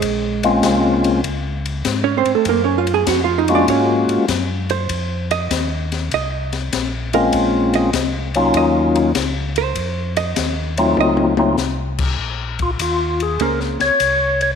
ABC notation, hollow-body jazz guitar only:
X:1
M:4/4
L:1/16
Q:"Swing" 1/4=99
K:Bbm
V:1 name="Hollow-body jazz guitar"
[A,A]4- [A,A] z8 [Dd] [Cc] [=A,=A] | [B,B] [Dd] [Ff] [Aa] [Gg] [Ff] [Ee] [=D=d] [_D_d]2 z4 c2- | c2 e6 e2 z4 B2- | B2 e6 e2 z4 c2- |
c2 e6 e2 z6 | z8 [B,DAc]2 z6 |]